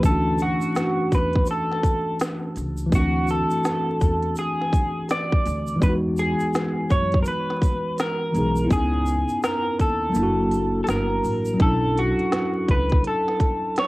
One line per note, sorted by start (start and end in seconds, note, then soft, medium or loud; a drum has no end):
0.00 0.54 D2 medium
0.00 2.85 E3 medium
0.00 2.87 A3 medium
0.00 kick loud
0.00 closed hi-hat medium
0.04 2.89 C#4 medium
0.04 2.91 D4 medium
0.04 0.42 A4 medium
0.04 shaker medium
0.11 2.92 F#4 medium
0.38 1.15 F#4 medium
0.38 closed hi-hat medium
0.38 shaker soft
0.61 closed hi-hat soft
0.61 shaker medium
0.75 snare loud
0.75 closed hi-hat medium
0.75 shaker medium
1.12 1.43 E2 medium
1.12 1.50 B4 medium
1.12 kick medium
1.12 closed hi-hat medium
1.12 shaker soft
1.33 kick medium
1.33 closed hi-hat soft
1.46 closed hi-hat medium
1.46 shaker medium
1.51 2.18 A4 medium
1.72 snare soft
1.83 kick medium
1.83 closed hi-hat medium
1.83 shaker soft
2.20 snare loud
2.20 closed hi-hat medium
2.20 shaker medium
2.56 2.88 C#2 medium
2.56 closed hi-hat medium
2.56 shaker medium
2.77 shaker medium
2.86 5.74 E3 medium
2.86 5.76 A3 medium
2.92 3.43 D2 medium
2.92 5.78 C4 medium
2.92 3.28 F#4 medium
2.92 kick loud
2.92 closed hi-hat medium
2.92 shaker medium
2.96 5.80 D4 medium
2.96 5.81 F#4 medium
3.28 4.38 A4 medium
3.28 closed hi-hat medium
3.28 shaker soft
3.51 closed hi-hat soft
3.51 shaker soft
3.64 snare loud
3.64 closed hi-hat medium
3.64 shaker medium
4.01 4.32 E2 medium
4.01 kick medium
4.01 closed hi-hat medium
4.01 shaker soft
4.22 closed hi-hat soft
4.36 5.11 G#4 medium
4.36 closed hi-hat medium
4.36 shaker medium
4.61 snare soft
4.73 kick medium
4.73 closed hi-hat medium
4.73 shaker soft
5.09 5.83 D5 loud
5.09 snare loud
5.09 closed hi-hat medium
5.09 shaker medium
5.32 kick loud
5.46 5.77 D2 medium
5.46 closed hi-hat medium
5.46 shaker soft
5.67 shaker medium
5.76 8.28 E3 medium
5.76 8.29 G#3 medium
5.82 6.32 E2 loud
5.82 8.31 B3 medium
5.82 5.93 B4 medium
5.82 kick loud
5.82 closed hi-hat medium
5.82 shaker medium
5.86 8.33 D#4 medium
5.86 8.34 F#4 medium
6.17 6.93 G#4 medium
6.17 closed hi-hat medium
6.17 shaker medium
6.40 closed hi-hat soft
6.40 shaker soft
6.54 snare loud
6.54 closed hi-hat medium
6.54 shaker medium
6.90 7.22 F#2 medium
6.90 7.22 C#5 medium
6.90 kick medium
6.90 closed hi-hat medium
6.90 shaker soft
7.12 kick medium
7.12 closed hi-hat soft
7.23 7.27 A#4 medium
7.23 closed hi-hat medium
7.23 shaker medium
7.28 8.00 B4 medium
7.50 snare soft
7.62 kick medium
7.62 closed hi-hat medium
7.62 shaker soft
7.98 8.72 A#4 medium
7.98 snare loud
7.98 closed hi-hat medium
7.98 shaker medium
8.32 8.66 B1 medium
8.32 8.70 E3 soft
8.32 8.70 G#3 soft
8.32 8.67 B3 soft
8.32 closed hi-hat medium
8.32 shaker soft
8.37 8.72 D#4 soft
8.37 8.73 G#4 medium
8.56 shaker medium
8.65 10.11 B3 medium
8.65 10.09 E4 medium
8.70 9.22 C#2 loud
8.70 10.13 C#4 medium
8.70 9.44 G#4 medium
8.70 kick loud
8.70 closed hi-hat medium
8.70 shaker medium
8.75 10.14 D#4 medium
8.75 10.16 G#5 medium
9.06 closed hi-hat medium
9.06 shaker medium
9.29 closed hi-hat soft
9.29 shaker soft
9.43 9.77 A#4 medium
9.43 snare loud
9.43 closed hi-hat medium
9.43 shaker medium
9.79 10.11 D#2 medium
9.79 10.83 A4 medium
9.79 kick medium
9.79 closed hi-hat medium
9.79 shaker soft
10.09 11.53 F#3 medium
10.09 11.56 A#3 medium
10.14 10.78 F#1 loud
10.14 11.57 D4 medium
10.14 closed hi-hat medium
10.14 shaker medium
10.19 11.59 E4 medium
10.19 11.61 F#4 medium
10.51 closed hi-hat medium
10.51 shaker soft
10.84 10.89 A4 medium
10.84 closed hi-hat medium
10.84 shaker medium
10.88 11.19 G1 medium
10.88 11.62 A#4 medium
10.88 snare loud
11.24 11.55 A1 medium
11.24 open hi-hat soft
11.24 shaker soft
11.45 closed hi-hat soft
11.45 shaker medium
11.54 13.87 F#3 medium
11.54 13.87 C#4 medium
11.60 12.11 B1 loud
11.60 13.87 D4 medium
11.60 11.98 A4 medium
11.60 kick loud
11.60 closed hi-hat medium
11.64 13.87 E4 medium
11.64 13.87 A4 medium
11.97 12.72 F#4 loud
11.97 closed hi-hat medium
12.19 closed hi-hat soft
12.32 snare loud
12.32 closed hi-hat medium
12.69 13.00 C#2 medium
12.69 13.07 B4 medium
12.69 kick medium
12.69 closed hi-hat medium
12.90 kick medium
12.90 closed hi-hat soft
13.04 13.79 A4 medium
13.04 closed hi-hat medium
13.28 snare soft
13.40 kick medium
13.40 closed hi-hat medium
13.76 13.87 C#5 loud
13.76 snare loud
13.76 closed hi-hat medium